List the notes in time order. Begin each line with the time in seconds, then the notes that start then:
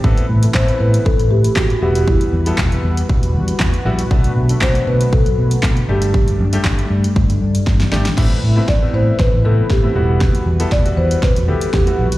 0.04 A1 C3 E3 A3 B3 C4 E4 A4 B4, kick
0.18 closed hi-hat
0.29 A2
0.43 E4 A4, closed hi-hat
0.54 A1 B3 C4 E4 A4 C5, kick, snare, clap
0.68 closed hi-hat
0.80 A2 B4
0.94 closed hi-hat
1.05 A1 A4, kick
1.19 A1, closed hi-hat
1.31 A2 G4
1.44 closed hi-hat
1.56 A2 F#4, kick, snare, clap
1.70 closed hi-hat
1.82 E1 G3 B3 E4 F#4 G4
1.95 closed hi-hat
2.07 E4, kick
2.21 closed hi-hat
2.33 E2
2.46 G3 B3 E4 A4, closed hi-hat
2.58 E1, kick, snare, clap
2.72 closed hi-hat
2.84 E2
2.97 closed hi-hat
3.09 E1, kick
3.23 E1, closed hi-hat
3.35 E2
3.48 closed hi-hat
3.59 E2, kick, snare, clap
3.74 closed hi-hat
3.85 A#1 G3 B3 E4 F#4
3.99 closed hi-hat
4.11 B1 D3 F#3 A3 B3 D4 F#4, kick
4.24 closed hi-hat
4.36 B2
4.49 D4 A4, closed hi-hat
4.61 B1 A3 B3 D4 F#4 C5, kick, snare, clap
4.75 closed hi-hat
4.87 B2 B4
5.01 closed hi-hat
5.13 B1 A4, kick
5.26 B1, closed hi-hat
5.38 B2
5.51 closed hi-hat
5.63 B2, kick, snare, clap
5.77 closed hi-hat
5.89 G1 G3 A3 D4 G4
6.02 closed hi-hat
6.14 kick
6.28 closed hi-hat
6.40 G2
6.53 G3 A3 D4 G4, closed hi-hat
6.64 G1, kick, snare, clap
6.79 closed hi-hat
6.91 G2
7.04 closed hi-hat
7.16 G1, kick
7.29 G1, closed hi-hat
7.41 G2
7.55 closed hi-hat
7.67 G2, kick, snare
7.80 snare, closed hi-hat
7.92 G#1 G3 A3 D4 G4, snare
8.05 snare, closed hi-hat
8.17 A1 C3 E3 A3 B3 C4 E4 B4, kick, snare, crash
8.43 A2
8.56 A3 B3 C4 E4
8.68 A1 D5, kick, snare
8.82 A3 B3 C4 E4
8.94 A2 C5
9.19 A1 B4, kick, snare
9.33 A1
9.44 A2 A3 B3 C4 E4 A4
9.70 A2 G4, kick, snare
9.83 A3 B3 C4 E4
9.95 E1 G3 B3 E4 F#4
10.21 kick, snare
10.35 closed hi-hat
10.46 E2
10.60 G3 B3 E4 A4, closed hi-hat
10.72 E1 D5, kick, snare
10.85 G3 B3 E4 F#4, closed hi-hat
10.97 E2 C5
11.11 closed hi-hat
11.23 E1 B4, kick, snare
11.36 E1, closed hi-hat
11.48 E2 G3 B3 E4 G4 A4
11.61 closed hi-hat
11.74 E2 G4, kick, snare
11.87 G3 B3 E4 F#4, closed hi-hat
11.99 A#1
12.12 closed hi-hat